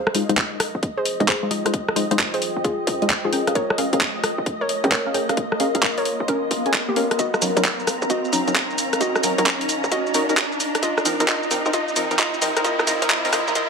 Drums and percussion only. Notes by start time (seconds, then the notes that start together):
0.07 cross-stick
0.15 open hi-hat
0.29 closed hi-hat
0.37 kick, clap, closed hi-hat
0.60 cross-stick, open hi-hat
0.83 kick, closed hi-hat
1.05 open hi-hat
1.20 closed hi-hat
1.28 kick, clap, closed hi-hat
1.51 open hi-hat
1.66 cross-stick, closed hi-hat
1.74 kick, closed hi-hat
1.88 cross-stick
1.96 open hi-hat
2.11 closed hi-hat
2.19 kick, clap, closed hi-hat
2.34 open hi-hat
2.42 open hi-hat
2.64 kick, closed hi-hat
2.87 open hi-hat
3.02 closed hi-hat
3.10 kick, clap, closed hi-hat
3.33 open hi-hat
3.47 cross-stick, closed hi-hat
3.55 kick, closed hi-hat
3.70 cross-stick
3.78 open hi-hat
3.93 closed hi-hat
4.01 kick, clap, closed hi-hat
4.24 cross-stick, open hi-hat
4.46 kick, closed hi-hat
4.69 open hi-hat
4.84 closed hi-hat
4.92 kick, clap, closed hi-hat
5.14 open hi-hat
5.29 cross-stick, closed hi-hat
5.37 kick, closed hi-hat
5.52 cross-stick
5.60 open hi-hat
5.75 kick, closed hi-hat
5.83 kick, clap, closed hi-hat
5.98 open hi-hat
6.05 open hi-hat
6.28 kick, closed hi-hat
6.51 open hi-hat
6.66 closed hi-hat
6.74 kick, clap, closed hi-hat
6.96 open hi-hat
7.11 cross-stick, closed hi-hat
7.19 kick, closed hi-hat, shaker
7.34 cross-stick, shaker
7.42 open hi-hat, shaker
7.57 closed hi-hat, shaker
7.64 kick, clap, closed hi-hat, shaker
7.80 shaker
7.87 cross-stick, open hi-hat, shaker
8.02 shaker
8.10 kick, closed hi-hat, shaker
8.25 shaker
8.33 open hi-hat, shaker
8.48 closed hi-hat, shaker
8.55 kick, clap, closed hi-hat, shaker
8.70 shaker
8.78 open hi-hat, shaker
8.93 cross-stick, closed hi-hat, shaker
9.01 kick, closed hi-hat, shaker
9.16 cross-stick, shaker
9.23 open hi-hat, shaker
9.38 closed hi-hat, shaker
9.46 kick, clap, closed hi-hat, shaker
9.61 open hi-hat, shaker
9.69 open hi-hat, shaker
9.84 shaker
9.92 kick, closed hi-hat, shaker
10.06 shaker
10.14 open hi-hat, shaker
10.29 closed hi-hat, shaker
10.37 kick, clap, closed hi-hat, shaker
10.52 shaker
10.60 open hi-hat, shaker
10.75 cross-stick, closed hi-hat, shaker
10.83 kick, closed hi-hat, shaker
10.98 cross-stick, shaker
11.05 open hi-hat, shaker
11.20 closed hi-hat, shaker
11.28 kick, clap, closed hi-hat, shaker
11.43 shaker
11.51 open hi-hat, shaker
11.66 shaker
11.73 kick, closed hi-hat, shaker
11.88 shaker
11.96 open hi-hat, shaker
12.11 closed hi-hat, shaker
12.19 kick, clap, closed hi-hat, shaker
12.34 shaker
12.42 open hi-hat, shaker
12.57 cross-stick, closed hi-hat, shaker
12.64 kick, closed hi-hat, shaker
12.79 cross-stick, shaker
12.87 open hi-hat, shaker
13.02 kick, closed hi-hat, shaker
13.10 kick, clap, closed hi-hat, shaker
13.25 open hi-hat, shaker
13.33 cross-stick, open hi-hat, shaker
13.48 shaker
13.55 kick, closed hi-hat, shaker